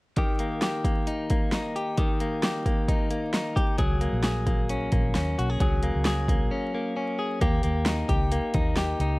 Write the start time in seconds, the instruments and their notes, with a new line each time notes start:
0.17 clean electric guitar D#3 G4, kick, closed hi-hat
0.39 clean electric guitar A#3, closed hi-hat
0.62 clean electric guitar G4, snare, closed hi-hat
0.84 clean electric guitar A#3, kick, closed hi-hat
1.07 clean electric guitar D#4, closed hi-hat
1.30 clean electric guitar A#3, kick, closed hi-hat
1.52 clean electric guitar D#4, snare, closed hi-hat
1.76 clean electric guitar G4, closed hi-hat
1.98 clean electric guitar D#3 G4, kick, closed hi-hat
2.20 clean electric guitar A#3, closed hi-hat
2.43 clean electric guitar G4, snare, closed hi-hat
2.66 clean electric guitar A#3, kick, closed hi-hat
2.88 clean electric guitar D#4, kick, closed hi-hat
3.10 clean electric guitar A#3, closed hi-hat
3.33 clean electric guitar D#4, snare, closed hi-hat
3.56 clean electric guitar G4, kick, closed hi-hat
3.78 fingered electric bass C#2, clean electric guitar F#3 G#4, kick, closed hi-hat
4.01 clean electric guitar A#3, closed hi-hat
4.13 fingered electric bass A#1
4.23 clean electric guitar G#4, snare, closed hi-hat
4.47 clean electric guitar A#3, kick, closed hi-hat
4.69 clean electric guitar C#4, closed hi-hat
4.92 fingered electric bass A#1, clean electric guitar A#3, kick, closed hi-hat
5.15 fingered electric bass D#2, clean electric guitar C#4, snare, closed hi-hat
5.39 fingered electric bass B1, clean electric guitar F#4, closed hi-hat
5.50 clean electric guitar G#4
5.60 fingered electric bass C#2, clean electric guitar F#3 G#4, kick, closed hi-hat
5.83 clean electric guitar A#3, closed hi-hat
5.95 fingered electric bass C#2
6.05 clean electric guitar G#4, snare, closed hi-hat
6.28 clean electric guitar A#3, kick, closed hi-hat
6.51 clean electric guitar C#4
6.74 clean electric guitar A#3
6.97 clean electric guitar C#4
7.19 clean electric guitar G#4
7.41 fingered electric bass D#2, clean electric guitar A#3 G4, kick, closed hi-hat
7.63 fingered electric bass D#2, clean electric guitar A#3, closed hi-hat
7.86 clean electric guitar D#4, snare, closed hi-hat
8.09 fingered electric bass C#2, clean electric guitar G4, kick, closed hi-hat
8.32 clean electric guitar A#3, closed hi-hat
8.54 fingered electric bass D#2, clean electric guitar D#4, kick, closed hi-hat
8.76 clean electric guitar G4, snare, closed hi-hat
9.00 fingered electric bass C#2, clean electric guitar D#4, closed hi-hat